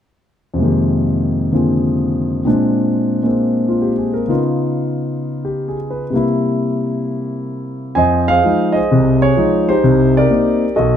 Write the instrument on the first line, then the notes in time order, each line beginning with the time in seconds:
grand piano
0.54 F2 C3
0.59 D#3 G#3 A#3
0.65 G4
1.52 D3 A#3 C4 F4 G#4
2.45 A#2 G#3 C4 D4
3.23 G#3 A#3 C4
3.68 F4
3.82 G4
3.98 G#4
4.14 A#4
4.28 C#3 B3 D#4 F4
5.45 G4
5.68 G#4
5.91 B4
6.10 C3 G3 A#3
6.16 E4
7.95 F2 C5 D#5 G#5
8.28 G#4 C5 F5
8.44 F3 G#3 D#4
8.72 G#4 C5 D#5
8.91 C2 C3
9.22 G#4 C#5
9.37 F3 G#3 D#4
9.69 D#4 G4 C5
9.84 C2 C3
10.17 G4 A#4 D5
10.30 A#3 C4 D#4
10.76 B1 F#4 A4 D#5